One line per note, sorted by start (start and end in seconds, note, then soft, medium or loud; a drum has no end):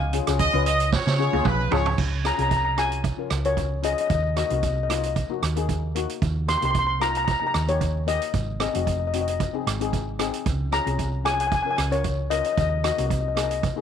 0.00 0.19 C#2 loud
0.00 0.36 F5 medium
0.00 0.37 G#5 medium
0.13 0.22 C#4 medium
0.13 0.22 F4 medium
0.13 0.22 G#4 medium
0.13 closed hi-hat medium
0.27 0.48 C#2 medium
0.27 0.42 C#4 medium
0.27 0.43 F4 medium
0.27 0.43 G#4 medium
0.27 cross-stick medium
0.27 closed hi-hat medium
0.39 0.64 D#5 loud
0.39 kick medium
0.39 closed hi-hat medium
0.53 0.95 C#2 medium
0.53 0.92 C#4 medium
0.53 0.93 F4 medium
0.53 0.93 B4 medium
0.65 0.90 D#5 loud
0.65 closed hi-hat medium
0.80 closed hi-hat medium
0.92 1.42 C#5 medium
0.92 kick loud
0.92 snare medium
1.07 1.27 C#3 medium
1.07 snare medium
1.19 1.27 C#4 medium
1.19 1.28 F4 medium
1.19 1.28 G#4 loud
1.32 1.43 C#2 medium
1.32 1.56 C#4 medium
1.32 1.57 F4 medium
1.32 1.57 G#4 loud
1.32 high tom medium
1.45 1.69 B1 medium
1.45 1.72 B4 medium
1.45 kick medium
1.45 mid tom medium
1.71 1.96 C#2 medium
1.71 1.98 C#4 medium
1.71 1.98 F4 medium
1.71 1.99 G#4 loud
1.71 1.98 C#5 medium
1.71 floor tom loud
1.86 floor tom loud
1.98 2.30 C#2 medium
1.98 kick loud
1.98 crash medium
2.24 2.33 C#4 medium
2.24 2.33 F4 medium
2.24 2.34 G#4 medium
2.24 2.33 A#5 medium
2.24 cross-stick medium
2.24 closed hi-hat medium
2.35 2.62 C#4 medium
2.35 2.41 A#5 medium
2.39 3.11 C2 medium
2.39 2.62 F4 medium
2.39 2.63 G#4 medium
2.39 2.48 A#5 medium
2.39 closed hi-hat medium
2.49 2.56 A#5 medium
2.49 kick medium
2.49 closed hi-hat medium
2.57 2.64 A#5 medium
2.65 2.71 A#5 medium
2.77 3.01 C#4 medium
2.77 3.02 F4 medium
2.77 3.02 G#4 medium
2.77 3.47 G#5 medium
2.77 cross-stick medium
2.77 closed hi-hat medium
2.92 closed hi-hat medium
3.04 kick medium
3.04 closed hi-hat medium
3.17 3.33 C#4 medium
3.17 3.33 F4 medium
3.17 3.34 A#4 medium
3.30 3.93 C#2 medium
3.30 cross-stick medium
3.30 closed hi-hat medium
3.45 3.68 C#4 medium
3.45 3.69 F4 medium
3.45 3.69 A#4 medium
3.45 3.81 C#5 medium
3.45 closed hi-hat soft
3.57 kick medium
3.57 closed hi-hat medium
3.82 4.09 C#4 medium
3.82 4.10 F4 medium
3.82 4.10 G#4 medium
3.82 3.92 D#5 medium
3.82 closed hi-hat medium
3.93 4.00 D#5 medium
3.98 4.06 D#5 medium
3.98 closed hi-hat medium
4.07 4.42 D#2 medium
4.07 4.14 D#5 medium
4.07 kick loud
4.07 closed hi-hat medium
4.15 4.21 D#5 medium
4.23 4.30 D#5 medium
4.36 4.45 A#3 medium
4.36 4.45 D#4 medium
4.36 4.45 F#4 medium
4.36 4.45 D#5 medium
4.36 cross-stick medium
4.36 closed hi-hat medium
4.46 4.74 A#3 medium
4.46 4.53 D#5 soft
4.46 closed hi-hat medium
4.51 5.23 C2 medium
4.51 4.74 D#4 medium
4.51 4.75 F#4 medium
4.51 4.60 D#5 medium
4.61 4.66 D#5 soft
4.61 kick medium
4.61 closed hi-hat medium
4.67 4.74 D#5 soft
4.76 4.82 D#5 soft
4.83 4.88 D#5 medium
4.89 5.13 A#3 medium
4.89 5.14 D#4 medium
4.89 5.14 F4 medium
4.89 4.97 D#5 soft
4.89 cross-stick medium
4.89 closed hi-hat medium
4.98 5.05 D#5 soft
5.03 5.12 D#5 soft
5.03 closed hi-hat soft
5.16 kick medium
5.16 closed hi-hat soft
5.30 5.45 A#3 medium
5.30 5.45 D#4 medium
5.30 5.46 F#4 medium
5.42 6.05 D#2 medium
5.42 cross-stick medium
5.42 closed hi-hat medium
5.56 5.80 A#3 medium
5.56 5.80 D#4 medium
5.56 5.81 G#4 medium
5.56 closed hi-hat medium
5.69 kick medium
5.69 closed hi-hat medium
5.95 6.22 A#3 medium
5.95 6.22 D#4 medium
5.95 6.23 F#4 medium
5.95 closed hi-hat medium
6.10 closed hi-hat medium
6.22 6.54 D#2 medium
6.22 kick medium
6.22 closed hi-hat medium
6.48 6.57 A#3 medium
6.48 6.57 D#4 medium
6.48 6.57 G4 medium
6.48 6.56 C6 medium
6.48 cross-stick medium
6.48 closed hi-hat medium
6.58 6.64 C6 medium
6.62 7.35 C2 medium
6.62 6.86 A#3 medium
6.62 6.86 D#4 medium
6.62 6.87 G4 medium
6.62 6.70 C6 medium
6.62 closed hi-hat medium
6.71 6.78 C6 medium
6.71 kick medium
6.71 closed hi-hat medium
6.79 6.86 C6 medium
6.87 6.94 C6 medium
7.00 7.25 A#3 medium
7.00 7.25 D#4 medium
7.00 7.26 F4 medium
7.00 7.09 A#5 loud
7.00 cross-stick medium
7.00 closed hi-hat medium
7.10 7.16 A#5 medium
7.15 7.23 A#5 medium
7.15 closed hi-hat medium
7.25 7.30 A#5 medium
7.25 kick medium
7.25 closed hi-hat soft
7.31 7.38 A#5 medium
7.40 7.57 A#3 medium
7.40 7.57 D#4 medium
7.40 7.58 G4 medium
7.40 7.45 A#5 medium
7.47 7.53 A#5 medium
7.54 8.17 D#2 medium
7.54 7.62 A#5 medium
7.54 cross-stick medium
7.54 closed hi-hat medium
7.68 7.92 A#3 medium
7.68 7.92 D#4 medium
7.68 7.93 G4 medium
7.68 8.09 C#5 medium
7.68 closed hi-hat soft
7.81 kick medium
7.81 closed hi-hat medium
8.07 8.34 A#3 medium
8.07 8.34 D#4 medium
8.07 8.34 G4 medium
8.07 8.57 D#5 medium
8.07 closed hi-hat medium
8.22 closed hi-hat medium
8.34 8.66 G#1 medium
8.34 kick medium
8.34 closed hi-hat medium
8.60 8.68 C4 medium
8.60 8.69 D#4 medium
8.60 8.69 G#4 medium
8.60 8.68 D#5 medium
8.60 cross-stick medium
8.60 closed hi-hat medium
8.69 8.76 D#5 soft
8.74 9.47 F1 medium
8.74 8.98 C4 medium
8.74 8.98 D#4 medium
8.74 8.99 F#4 medium
8.74 8.83 D#5 soft
8.74 closed hi-hat medium
8.85 8.91 D#5 soft
8.85 kick medium
8.85 closed hi-hat medium
8.93 8.98 D#5 soft
9.00 9.06 D#5 soft
9.07 9.13 D#5 soft
9.13 9.38 C4 medium
9.13 9.38 D#4 medium
9.13 9.38 F#4 medium
9.13 9.20 D#5 soft
9.13 closed hi-hat medium
9.21 9.28 D#5 medium
9.28 9.36 D#5 soft
9.28 closed hi-hat medium
9.40 kick medium
9.40 closed hi-hat medium
9.54 9.69 C4 medium
9.54 9.69 D#4 medium
9.54 9.70 G#4 medium
9.66 10.29 G#1 medium
9.66 cross-stick medium
9.66 closed hi-hat medium
9.80 10.04 C4 medium
9.80 10.04 D#4 medium
9.80 10.05 G#4 medium
9.80 closed hi-hat medium
9.93 kick medium
9.93 closed hi-hat medium
10.19 10.46 C4 medium
10.19 10.46 D#4 medium
10.19 10.46 G#4 medium
10.19 cross-stick medium
10.19 closed hi-hat medium
10.34 closed hi-hat medium
10.46 10.78 C#2 medium
10.46 kick loud
10.46 closed hi-hat medium
10.72 10.80 C#4 medium
10.72 10.81 F4 medium
10.72 10.81 G#4 medium
10.72 11.22 A#5 loud
10.72 cross-stick medium
10.72 closed hi-hat medium
10.86 11.59 C2 medium
10.86 11.10 C#4 medium
10.86 11.10 F4 medium
10.86 11.11 G#4 medium
10.86 closed hi-hat medium
10.99 kick medium
10.99 closed hi-hat medium
11.24 11.49 C#4 medium
11.24 11.49 F4 medium
11.24 11.50 G#4 medium
11.24 11.33 G#5 medium
11.24 cross-stick medium
11.24 closed hi-hat medium
11.34 11.39 G#5 medium
11.40 11.46 G#5 medium
11.40 closed hi-hat medium
11.47 11.53 G#5 medium
11.52 11.61 G#5 medium
11.52 kick medium
11.52 closed hi-hat soft
11.63 11.81 C#4 medium
11.63 11.81 F4 soft
11.63 11.81 A#4 medium
11.63 11.69 G#5 medium
11.71 11.75 G#5 medium
11.77 12.41 C#2 medium
11.77 11.85 G#5 medium
11.77 cross-stick medium
11.77 closed hi-hat medium
11.91 12.15 C#4 medium
11.91 12.16 F4 medium
11.91 12.16 A#4 medium
11.91 12.32 C#5 medium
11.91 closed hi-hat soft
12.04 kick medium
12.04 closed hi-hat medium
12.30 12.57 C#4 medium
12.30 12.58 F4 medium
12.30 12.58 A#4 medium
12.30 12.38 D#5 medium
12.30 closed hi-hat medium
12.39 12.45 D#5 medium
12.44 12.51 D#5 medium
12.44 closed hi-hat medium
12.53 12.59 D#5 medium
12.57 12.89 D#2 medium
12.57 12.68 D#5 medium
12.57 kick loud
12.57 closed hi-hat medium
12.69 12.77 D#5 medium
12.83 12.92 A#3 medium
12.83 12.93 D#4 medium
12.83 12.93 F#4 medium
12.83 12.90 D#5 medium
12.83 cross-stick medium
12.83 closed hi-hat medium
12.92 12.98 D#5 soft
12.97 13.71 C2 medium
12.97 13.21 A#3 medium
12.97 13.22 D#4 medium
12.97 13.22 F#4 medium
12.97 closed hi-hat medium
13.06 13.12 D#5 soft
13.10 13.19 D#5 soft
13.10 kick medium
13.10 closed hi-hat medium
13.21 13.27 D#5 soft
13.28 13.34 D#5 soft
13.35 13.61 A#3 medium
13.35 13.61 D#4 medium
13.35 13.61 G#4 medium
13.35 13.42 D#5 soft
13.35 cross-stick medium
13.35 closed hi-hat medium
13.43 13.49 D#5 medium
13.50 13.58 D#5 medium
13.50 closed hi-hat medium
13.63 kick loud
13.63 closed hi-hat medium
13.76 13.81 A#3 medium
13.76 13.81 D#4 medium
13.76 13.81 G#4 medium